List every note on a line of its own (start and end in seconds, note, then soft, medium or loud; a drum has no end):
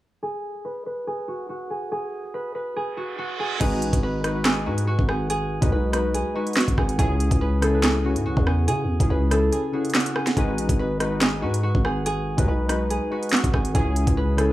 0.23 1.07 G#4 loud
0.65 0.86 B4 medium
0.86 2.34 B4 medium
1.07 1.70 G#4 medium
1.28 1.49 F#4 medium
1.49 2.97 F#4 medium
1.70 1.91 G#4 medium
1.92 2.76 G#4 loud
2.34 2.54 B4 medium
2.55 4.03 B4 medium
2.76 3.39 G#4 medium
2.76 reverse cymbal medium
2.97 3.18 F#4 medium
3.19 4.66 F#4 loud
3.40 3.60 G#4 medium
3.60 3.83 G#1 loud
3.60 4.20 G#3 loud
3.60 4.20 D#4 medium
3.60 4.20 F#4 medium
3.60 4.45 G#4 loud
3.60 4.21 B4 loud
3.60 kick loud
3.60 closed hi-hat medium
3.60 crash loud
3.82 3.93 A1 loud
3.82 closed hi-hat medium
3.93 4.68 G#1 loud
3.93 kick loud
3.93 closed hi-hat medium
4.03 4.24 B4 medium
4.24 4.33 G#3 medium
4.24 4.33 D#4 medium
4.24 4.34 F#4 medium
4.24 5.72 B4 medium
4.24 4.35 B4 medium
4.24 cross-stick loud
4.24 closed hi-hat medium
4.34 4.64 G#3 medium
4.34 4.64 D#4 medium
4.34 4.64 F#4 medium
4.34 4.65 B4 medium
4.45 5.08 G#4 medium
4.45 snare loud
4.45 clap loud
4.45 closed hi-hat medium
4.65 4.97 G#2 loud
4.65 5.45 G#3 medium
4.65 5.45 D#4 medium
4.65 4.87 F#4 medium
4.65 5.46 F#4 medium
4.65 5.46 B4 medium
4.78 closed hi-hat medium
4.87 6.35 F#4 medium
4.99 5.60 G#1 loud
4.99 kick medium
5.09 5.30 G#4 medium
5.09 cross-stick loud
5.30 6.14 G#4 loud
5.30 closed hi-hat loud
5.61 5.71 D#2 loud
5.61 5.91 G#3 medium
5.61 5.91 D#4 medium
5.61 5.91 F#4 medium
5.61 5.91 B4 medium
5.61 kick loud
5.61 closed hi-hat medium
5.72 6.23 B1 loud
5.72 5.93 B4 medium
5.92 6.32 G#3 medium
5.92 6.32 D#4 medium
5.92 6.33 F#4 medium
5.92 7.41 B4 medium
5.92 6.33 B4 medium
5.92 cross-stick loud
5.92 closed hi-hat medium
6.14 6.77 G#4 medium
6.14 closed hi-hat medium
6.34 6.94 G#3 medium
6.34 6.95 D#4 medium
6.34 6.56 F#4 medium
6.34 6.95 F#4 medium
6.34 6.95 B4 medium
6.47 closed hi-hat soft
6.53 8.04 F#4 medium
6.53 snare loud
6.53 clap medium
6.53 closed hi-hat medium
6.60 closed hi-hat medium
6.68 6.77 G#1 loud
6.68 kick medium
6.68 closed hi-hat medium
6.78 6.98 G#1 loud
6.78 6.98 G#4 medium
6.78 kick medium
6.78 cross-stick loud
6.89 closed hi-hat medium
6.98 7.30 C#2 loud
6.98 7.58 C#3 medium
6.98 7.58 C#4 medium
6.98 7.58 E4 medium
6.98 7.68 G#4 loud
6.98 7.59 G#4 loud
6.98 kick loud
6.98 closed hi-hat loud
7.20 closed hi-hat medium
7.31 8.17 C#2 loud
7.31 kick loud
7.31 closed hi-hat medium
7.41 9.10 B4 medium
7.60 7.71 C#3 medium
7.60 7.72 C#4 medium
7.60 7.72 E4 medium
7.60 7.73 G#4 medium
7.60 7.89 A4 medium
7.60 cross-stick loud
7.60 closed hi-hat medium
7.73 8.02 C#3 medium
7.73 8.02 C#4 medium
7.73 8.03 E4 medium
7.73 8.03 B4 medium
7.83 8.46 G#4 medium
7.83 snare loud
7.83 clap loud
7.83 closed hi-hat medium
8.04 8.83 C#3 medium
8.04 8.84 C#4 medium
8.04 8.84 E4 medium
8.04 8.25 F#4 medium
8.04 8.84 F#4 medium
8.16 8.27 G#2 loud
8.16 closed hi-hat medium
8.26 8.36 C#2 loud
8.26 9.73 F#4 medium
8.37 8.69 E2 loud
8.37 kick medium
8.47 8.67 G#4 medium
8.47 cross-stick loud
8.68 8.85 C#3 loud
8.68 9.37 G#4 loud
8.68 closed hi-hat loud
8.84 8.99 E2 loud
8.99 9.10 C#2 loud
8.99 9.29 C#3 medium
8.99 9.29 C#4 medium
8.99 9.29 E4 medium
8.99 9.30 G#4 medium
8.99 kick loud
8.99 closed hi-hat medium
9.10 9.51 C#2 loud
9.10 10.79 B4 medium
9.30 9.70 C#3 medium
9.30 9.71 C#4 medium
9.30 9.71 E4 medium
9.30 9.71 G#4 medium
9.30 9.58 A4 medium
9.30 cross-stick loud
9.30 closed hi-hat medium
9.52 10.15 G#4 medium
9.52 closed hi-hat medium
9.72 10.32 C#3 medium
9.72 10.33 C#4 medium
9.72 10.33 E4 medium
9.72 9.94 F#4 medium
9.72 10.33 G#4 medium
9.85 closed hi-hat soft
9.90 closed hi-hat medium
9.95 11.42 F#4 medium
9.95 snare loud
9.95 clap medium
9.95 closed hi-hat medium
10.00 closed hi-hat medium
10.06 closed hi-hat medium
10.16 10.36 G#4 medium
10.16 cross-stick loud
10.27 snare medium
10.27 closed hi-hat medium
10.36 10.59 G#1 loud
10.36 10.96 G#3 loud
10.36 10.96 D#4 loud
10.36 10.96 F#4 medium
10.36 11.21 G#4 loud
10.36 10.97 B4 loud
10.36 kick loud
10.36 closed hi-hat medium
10.58 10.69 A1 loud
10.58 closed hi-hat medium
10.69 11.44 G#1 loud
10.69 kick loud
10.69 closed hi-hat medium
10.79 11.00 B4 medium
11.00 11.09 G#3 medium
11.00 11.10 D#4 medium
11.00 11.10 F#4 medium
11.00 12.48 B4 medium
11.00 11.11 B4 medium
11.00 cross-stick loud
11.00 closed hi-hat medium
11.10 11.40 G#3 medium
11.10 11.40 D#4 medium
11.10 11.41 F#4 medium
11.10 11.41 B4 medium
11.21 11.84 G#4 medium
11.21 snare loud
11.21 clap loud
11.21 closed hi-hat medium
11.41 11.73 G#2 loud
11.41 12.21 G#3 medium
11.41 12.22 D#4 medium
11.41 11.63 F#4 medium
11.41 12.22 F#4 medium
11.41 12.22 B4 medium
11.54 closed hi-hat medium
11.63 13.11 F#4 medium
11.75 12.36 G#1 loud
11.75 kick medium
11.85 12.06 G#4 medium
11.85 cross-stick loud
12.06 12.90 G#4 loud
12.06 closed hi-hat medium
12.37 12.47 D#2 loud
12.37 12.67 G#3 medium
12.37 12.67 D#4 medium
12.37 12.67 F#4 medium
12.37 12.68 B4 medium
12.37 kick loud
12.37 closed hi-hat medium
12.48 12.99 B1 loud
12.48 12.69 B4 medium
12.68 13.08 G#3 medium
12.68 13.09 D#4 medium
12.68 13.09 F#4 medium
12.68 14.17 B4 medium
12.68 13.09 B4 medium
12.68 cross-stick loud
12.68 closed hi-hat medium
12.90 13.53 G#4 medium
12.90 closed hi-hat medium
13.10 13.70 G#3 medium
13.10 13.71 D#4 medium
13.10 13.32 F#4 medium
13.10 13.71 F#4 medium
13.10 13.71 B4 medium
13.23 closed hi-hat soft
13.29 14.53 F#4 loud
13.29 snare loud
13.29 clap medium
13.29 closed hi-hat medium
13.36 closed hi-hat medium
13.44 13.53 G#1 loud
13.44 kick medium
13.44 closed hi-hat medium
13.54 13.74 G#1 loud
13.54 13.74 G#4 medium
13.54 kick medium
13.54 cross-stick loud
13.65 closed hi-hat medium
13.74 14.06 C#2 loud
13.74 14.34 C#3 medium
13.74 14.34 C#4 medium
13.74 14.34 E4 medium
13.74 14.44 G#4 loud
13.74 14.35 G#4 loud
13.74 kick loud
13.74 closed hi-hat loud
13.96 closed hi-hat medium
14.07 14.53 C#2 loud
14.07 kick loud
14.07 closed hi-hat medium
14.17 14.53 B4 medium
14.36 14.47 C#3 medium
14.36 14.48 C#4 medium
14.36 14.48 E4 medium
14.36 14.49 G#4 medium
14.36 14.53 A4 medium
14.36 cross-stick loud
14.36 closed hi-hat medium
14.49 14.53 C#3 medium
14.49 14.53 C#4 medium